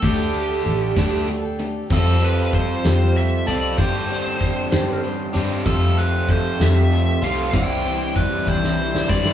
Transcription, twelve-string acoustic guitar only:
X:1
M:6/8
L:1/16
Q:3/8=64
K:Flyd
V:1 name="Twelve-string acoustic guitar"
[D,A,DGA] [DGA]2 [DGA] [A,DGA]2 [D,A,DGA] [DGA]2 [DGA] [A,DGA]2 | [F,G,CGA]2 [CGA]2 [G,CGA]2 [F,G,CGA]2 [G,CGA]2 [CGA]2 | [G,DGc]2 [DGc]2 [G,DGc]2 [G,DGc]2 [G,DGc]2 [DGc]2 | [F,G,CGA]2 [CGA]2 [G,CGA]2 [F,G,CGA]2 [G,CGA]2 [CGA]2 |
[C,E,G,DEc]2 [G,DEc]2 [G,DE]2 [C,E,G,DEc]2 [G,DEc]2 [G,DEc]2 |]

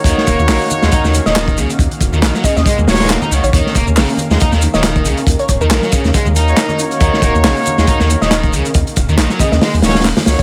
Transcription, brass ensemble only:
X:1
M:4/4
L:1/16
Q:"Swing 16ths" 1/4=138
K:Ebm
V:1 name="Brass ensemble"
[B,EGd]8- [B,EGd]3 [B,EGd] z4 | z8 z2 [B,EGd]2 z2 [B,EGd] z | z8 z3 [B,EGd] z4 | z8 z3 [B,EGd] z [B,EGd]3- |
[B,EGd]8- [B,EGd]3 [B,EGd] z4 | z8 z2 [B,EGd]2 z2 [B,EGd] z |]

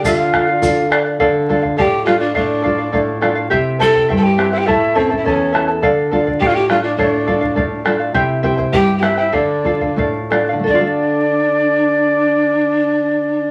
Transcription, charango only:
X:1
M:2/4
L:1/16
Q:1/4=104
K:Dm
V:1 name="Charango"
[Adf]2 [Adf] [df] [Adf]2 [Adf] [df] | [Adf]2 [Adf] [df] [Adf]2 [Adf] [df] | [Adf]2 [Adf] [df] [Adf]2 [Adf] [df] | [EGceg]2 [Eceg] [Ecg] [Eceg]2 [Eceg] [Ecg] |
[EA^cea]2 [EAea] [EAa] [EAea]2 [EAea] [EAa] | [Adf]2 [Adf] [df] [Adf]2 [Adf] [df] | [Adf]2 [Adf] [df] [Adf]2 [Adf] [df] | [EGceg]2 [Eceg] [Ecg] [Eceg]2 [Eceg] [Ecg] |
[Adf]2 [Adf] [df] [Adf]2 [Adf] [df] | [Adf]8- | [Adf]8 |]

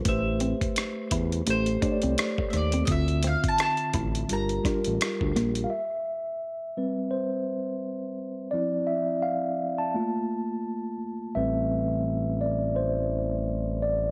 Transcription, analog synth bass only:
X:1
M:4/4
L:1/16
Q:"Swing 16ths" 1/4=85
K:Gmix
V:1 name="Analog synth bass" clef=bass
A,,,3 E,, z2 E,,2 A,,,2 z C,, z2 ^D,,2 | D,,3 A,,, z2 A,,,2 G,,,2 z A,,, z D,, _B,,,2 | z16 | z16 |
A,,,16 |]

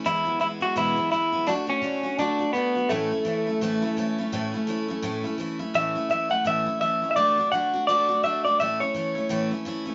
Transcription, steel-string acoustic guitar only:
X:1
M:4/4
L:1/8
Q:"Swing" 1/4=168
K:A
V:1 name="Steel-string acoustic guitar"
[E,,B,,E,G,B,E] [E,G,B,E] [E,G,B,E] [E,G,B,E] [E,,B,,E,G,B,E] [E,G,B,E] [E,G,B,E] [E,G,B,E] | [D,A,DF] [A,DF] [D,A,DF] [A,DF] [D,A,DF] [A,DF] [D,A,DF] [A,DF] | [A,,E,A,CE] [A,CE] [E,A,CE] [A,CE] [A,,E,A,CE] [A,CE] [E,A,CE] [A,CE] | [A,,E,A,CE] [A,CE] [E,A,CE] [A,CE] [A,,E,A,CE] [A,CE] [E,A,CE] [A,CE] |
[A,,E,A,CE] [A,CE] [E,A,CE] [A,CE] [A,,E,A,CE] [A,CE] [E,A,CE] [A,CE] | [D,A,DF] [A,DF] [D,A,DF] [A,DF] [D,A,DF] [A,DF] [D,A,DF] [A,DF] | [A,,E,A,CE] [A,CE] [E,A,CE] [A,CE] [A,,E,A,CE] [A,CE] [E,A,CE] [A,CE] |]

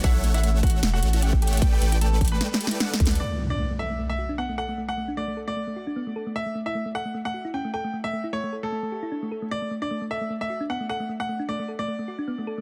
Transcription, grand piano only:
X:1
M:4/4
L:1/16
Q:"Swing 16ths" 1/4=152
K:Bm
V:1 name="Grand piano"
[Ee]2 z [Ee]2 z [Ff]2 z [Ff]2 z [Gg] z [Gg]2 | z [Gg]2 z [Aa]2 z [Bb]8 z | d2 z d2 z e2 z e2 z f z f2 | z f2 z d2 z d8 z |
e2 z e2 z f2 z f2 z g z g2 | z e2 z c2 z A8 z | d2 z d2 z e2 z e2 z f z f2 | z f2 z d2 z d8 z |]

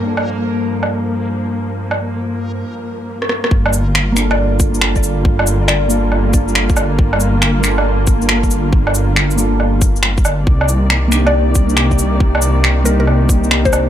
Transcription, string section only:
X:1
M:4/4
L:1/8
Q:"Swing 16ths" 1/4=138
K:Gm
V:1 name="String section" clef=bass
[G,,F,B,]8- | [G,,F,B,]8 | [G,B,F]8- | [G,B,F]8- |
[G,B,F]8- | [G,B,F]8 | [C,E,B,d]8- | [C,E,B,d]8 |]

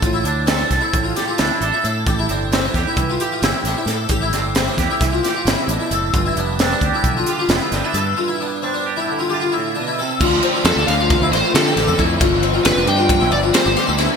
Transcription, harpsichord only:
X:1
M:9/8
L:1/16
Q:3/8=89
K:Gmix
V:1 name="Harpsichord"
F E D2 C D2 E2 F G F E2 D E A2 | G E D2 C D2 E2 F G F E2 D E A2 | G E D2 C D2 E2 F G F E2 D E A2 | F E D2 C D2 E2 F G F E2 D E A2 |
F E D2 C D2 E2 F G F E2 D E A2 | F2 C F2 D D F2 E D F2 G G A E2 | F2 C F2 D D F2 E D F2 G G A E2 |]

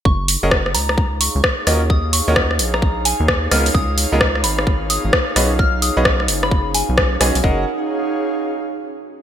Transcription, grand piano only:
X:1
M:4/4
L:1/16
Q:"Swing 16ths" 1/4=130
K:F#
V:1 name="Grand piano"
z3 [CFGAd] z8 z2 [CEFAd] z | z3 [CEFAd] z8 z2 [B,EGAd] z | z3 [B,EGAd] z8 z2 [CFGBd] z | z3 [CFGBd] z8 z2 [CFGBd] z |
[CFGAd]2 z12 z2 |]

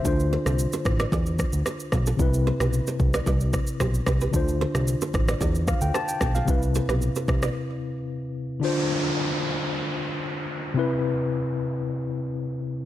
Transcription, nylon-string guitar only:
X:1
M:4/4
L:1/16
Q:1/4=112
K:Ddor
V:1 name="Nylon-string guitar"
z2 [Ac] [FA] z [Ac] z [Bd] [Ad]2 z2 [Ac] z [FA] [FA] | z2 [Ac] [GB] z [Ac] z [Bd] [Bd]2 z2 [Gc] z [GB] [GB] | z2 [Ac] [FA] z [Ac] z [Bd] [Ad]2 z2 [Ac] z [FA] [FA] | z2 [Ac] [GB] z [Ac] z [Bd] z8 |
z16 | z16 |]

